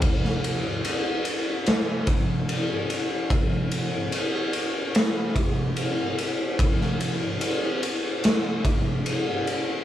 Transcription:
\new DrumStaff \with { instrumentName = "Drums" } \drummode { \time 4/4 \tempo 4 = 73 <bd cymr>16 sn16 cymr8 cymr8 cymr8 <cymr sn>8 <bd cymr>8 cymr8 cymr8 | <bd cymr>8 cymr8 cymr8 cymr8 <cymr sn>8 <bd cymr>8 cymr8 cymr8 | <bd cymr>16 sn16 cymr8 cymr8 cymr8 <cymr sn>8 <bd cymr>8 cymr8 cymr8 | }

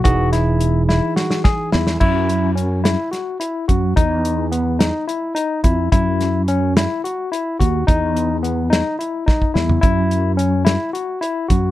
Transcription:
<<
  \new Staff \with { instrumentName = "Tine electric piano" } { \time 7/8 \key e \major \tempo 4 = 107 fis'8 e'4 e'8 fis'8 gis'8 e'8 | e'4 cis'8 e'8 fis'8 e'8 fis'8 | dis'4 b8 dis'8 e'8 dis'8 e'8 | e'4 cis'8 e'8 fis'8 e'8 fis'8 |
dis'4 b8 dis'8 e'8 dis'8 e'8 | e'4 cis'8 e'8 fis'8 e'8 fis'8 | }
  \new Staff \with { instrumentName = "Tine electric piano" } { \time 7/8 \key e \major <e dis' gis'>2.~ <e dis' gis'>8 | r2. r8 | r2. r8 | r2. r8 |
r2. r8 | r2. r8 | }
  \new Staff \with { instrumentName = "Fretless electric bass" } { \clef bass \time 7/8 \key e \major e,,2 r4 e,8 | fis,2 r4 fis,8 | e,2 r4 eis,8 | fis,2 r4 dis,8 |
e,2 r4 e,8 | fis,2 r4 fis,8 | }
  \new DrumStaff \with { instrumentName = "Drums" } \drummode { \time 7/8 <hh bd>8 <hh sn>8 hh8 sn8 sn16 sn16 <bd sn>8 sn16 sn16 | <cymc bd>8 hh8 hh8 <hh sn>8 <hh sn>8 hh8 <hh bd>8 | <hh bd>8 hh8 hh8 <hh sn>8 hh8 hh8 <hh bd>8 | <hh bd>8 <hh sn>8 hh8 <hh sn>8 hh8 hh8 <hh bd>8 |
<hh bd>8 hh8 hh8 <hh sn>8 hh8 <bd sn>16 bd16 sn16 tomfh16 | <hh bd>8 hh8 hh8 <hh sn>8 hh8 hh8 <hh bd>8 | }
>>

